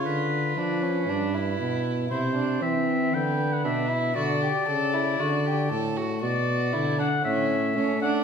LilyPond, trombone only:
\new Staff \with { instrumentName = "Trombone" } { \clef bass \time 4/4 \key d \major \tempo 4 = 117 d4 f4 g,4 b,4 | c4 e4 d4 b,4 | d8 r8 cis4 d4 a,4 | b,4 d4 a,4 a4 | }